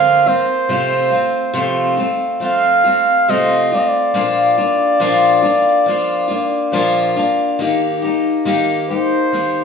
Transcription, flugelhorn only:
Already playing: F5
0.28 C5
2.45 F5
3.30 D#5
3.74 D5
3.79 D#5
3.88 D5
8.89 C5

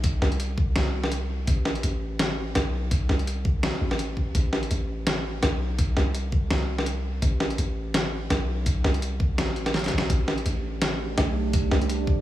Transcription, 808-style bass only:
Already playing: B1
0.22 C2
0.76 C2
1.47 A1
1.84 A1
2.55 B1
3.09 C2
3.81 A1
4.35 A1
4.71 A1
5.43 B1
5.97 C2
6.50 C2
7.22 A1
7.58 A1
8.30 B1
8.84 C2
9.38 A1
10.10 A1
10.46 A1
11.18 B1
11.71 C2

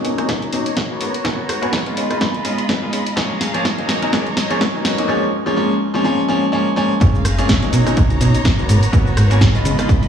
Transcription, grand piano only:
Already playing: F#3 A#3 C#4 D#4
0.17 F#3 A#3 C#4 D#4
0.52 F#3 A#3 C#4 D#4
0.90 A#3 B3 C#4 F#4
1.24 A#3 B3 C#4 F#4
1.62 A#3 B3 C#4 F#4
1.86 G#3 B3 D#4 F4
2.10 G#3 B3 D#4 F4
2.44 G#3 B3 D#4 F4
2.82 G#3 B3 D#4 F4
3.16 F3 G#3 A#3 C#4
3.54 F3 G#3 A#3 C#4
3.78 F#3 A#3 C#4 D#4
4.02 F#3 A#3 C#4 D#4
4.13 F3 G#3 A#3 C#4
4.50 F3 G#3 A#3 C#4
4.74 F#3 A#3 C#4 D#4
4.98 F#3 A#3 C#4 D#4
5.08 F3 G#3 A#3 C#4
5.46 F3 G#3 A#3 C#4
5.56 F3 G#3 A#3 C#4
5.94 F3 G#3 A#3 C#4
6.04 F3 G#3 A#3 C#4
6.29 F3 G#3 A#3 C#4
6.52 F3 G#3 A#3 C#4
6.76 F3 G#3 A#3 C#4
7.00 F3 G#3 A#3 C#4
7.38 F3 G#3 A#3 C#4
7.62 F#3 A#3 C#4 D#4
7.86 F#3 A#3 C#4 D#4
8.20 F#3 A#3 C#4 D#4
8.58 A#3 B3 C#4 F#4
8.92 A#3 B3 C#4 F#4
9.30 A#3 B3 C#4 F#4
9.55 G#3 B3 D#4 F4
9.78 G#3 B3 D#4 F4

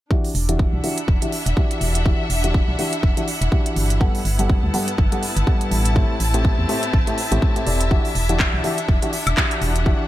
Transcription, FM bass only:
0.35 E1
0.73 B1
1.08 E1
1.46 E1
1.81 E1
2.30 E1
2.68 B1
3.03 E1
3.41 E1
3.76 G1
4.25 G1
4.63 D2
4.98 G1
5.37 G1
5.71 A1
6.20 A1
6.58 E2
6.93 A1
7.32 A1
7.67 E1
8.15 E1
8.54 B1
8.89 E1
9.27 E1
9.62 E1

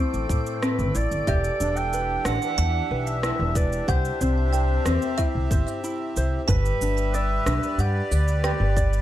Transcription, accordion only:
Already playing: A3 C4 A4
1.28 E3
1.60 D4
1.98 G4
2.45 E5
3.89 C3
4.45 C4
6.49 G3
7.11 B4
7.67 D5

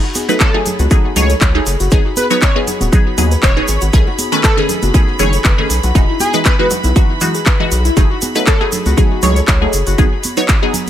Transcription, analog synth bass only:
0.79 C#2
1.16 C#2
1.41 C#2
1.66 F#1
1.80 F#1
1.92 G#1
2.81 D#1
3.18 D#2
3.43 D#1
3.68 G#1
3.82 G#1
3.93 B1
4.83 F#1
5.20 F#1
5.45 F#1
5.70 B1
5.83 B1
5.95 E1
6.84 B1
7.72 B1
7.97 F#1
8.86 C#2
9.23 C#2
9.48 C#2
9.73 F#1
9.87 F#1
9.98 G#1

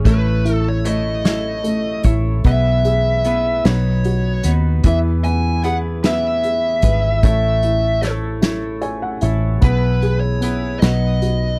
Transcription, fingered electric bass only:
0.05 A1
2.05 A1
2.45 B1
3.65 B1
4.45 D#2
4.84 E2
6.83 G#1
7.24 A1
9.23 A1
9.62 B1
10.82 B1

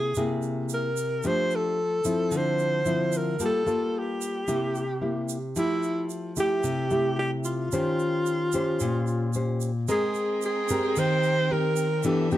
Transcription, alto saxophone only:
Already playing: G#4
0.74 A#4
1.27 C5
1.55 A4
2.37 C5
3.17 A#4
3.45 A4
3.99 G4
5.58 E4
6.40 G4
7.19 G4
7.45 F4
9.91 G#4
10.45 G#4
10.99 C5
11.52 A#4
12.06 A4
12.32 G4

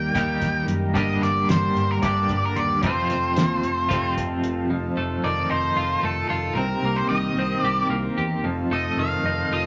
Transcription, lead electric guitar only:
Already playing: G5
0.96 D#5
1.23 D5
1.50 C5
1.91 A#4
2.03 D5
2.45 A#4
2.56 D5
2.83 C5
5.24 D5
5.51 C5
6.05 A4
6.29 A4
6.55 A#4
6.96 C5
7.09 D#5
7.62 D5
8.73 D#5
8.99 F5
9.53 D#5

